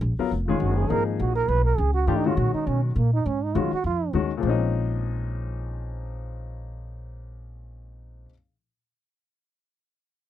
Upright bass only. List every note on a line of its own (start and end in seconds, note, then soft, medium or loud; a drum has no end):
0.01 0.17 A#1 medium
0.18 muted upright bass stroke soft
0.31 0.59 F1 medium
0.60 0.88 F#1 medium
0.90 1.18 G#1 medium
1.20 1.48 A#1 medium
1.48 1.77 B1 medium
1.78 2.07 C#2 medium
2.07 2.36 G#2 medium
2.37 2.53 A#2 medium
2.54 muted upright bass stroke soft
2.67 2.95 B2 medium
2.96 3.24 A#2 medium
3.26 3.54 G#2 medium
3.55 3.71 F#2 medium
3.72 muted upright bass stroke soft
3.84 4.13 F2 medium
4.13 4.42 D#2 medium
4.43 8.25 A#1 medium